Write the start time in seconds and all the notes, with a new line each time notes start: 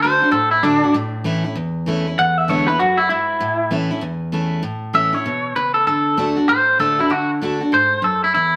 0.02 D3 A3 D4 F#4 C5
0.22 D4 F#4
0.32 A2 A4
0.51 E4
0.63 D3 A3 D4 F#4
0.84 D4 F#4
0.94 A2
1.24 E3 A3 C#4 E4
1.44 C#4 E4
1.55 E2
1.86 E3 A3 C#4 E4
2.07 C#4 E4
2.19 E2 F#5
2.38 E5
2.48 D3 G#3 B3 E4 C#5
2.68 B3 E4 B4
2.79 F#2 F#4
2.98 E4
3.09 G#2 E4
3.40 A2
3.71 E3 A3 C#4 E4
3.91 C#4 E4
4.01 E2
4.32 E3 A3 C#4 E4
4.63 A2
4.93 E3 A3 C#4 E4 E5
5.13 C#4 E4 C#5
5.26 B2
5.56 C#3 B4
5.74 A4
5.87 D3 A4
6.17 D3 A3 D4 F#4
6.36 D4 F#4
6.49 A2 C5
6.79 D3 A3 D4 F#4 A4
6.99 D4 E4 F#4
7.10 D3 F#4
7.41 D3 A3 D4 F#4
7.61 D4 F#4
7.72 G#2 C5
8.02 F#2 A4
8.24 E4
8.34 E2 E4